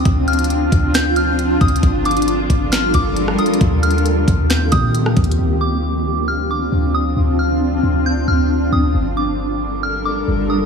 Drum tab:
HH |x-----------x--x--x--x--x-----------x-----------x-----------x-----------x-----------x---x---x---|x-----------x--x--x--x--x-----------x-----------x-----------x-----------x-----------x---x---x---|x-----------x---x---x---x-----------x-----------x-----------x-----------x-----------x---x---x---|------------------------------------------------------------------------------------------------|
SD |------------------------------------------------o-----------------------------------------------|------------------------------------------------o-----------------------------r-----------------|------------------------------------------------o-----------------------------r-----------------|------------------------------------------------------------------------------------------------|
BD |o-----------------------------------o-----------------------------------------------o-----------|o-----------------------------------o-----------------------o-----------------------------------|o-----------------------------------o-----------------------o-----------------------o-----------|------------------------------------------------------------------------------------------------|

HH |------------------------------------------------------------------------------------------------|------------------------------------------------------------------------------------------------|
SD |------------------------------------------------------------------------------------------------|------------------------------------------------------------------------------------------------|
BD |------------------------------------------------------------------------------------------------|------------------------------------------------------------------------------------------------|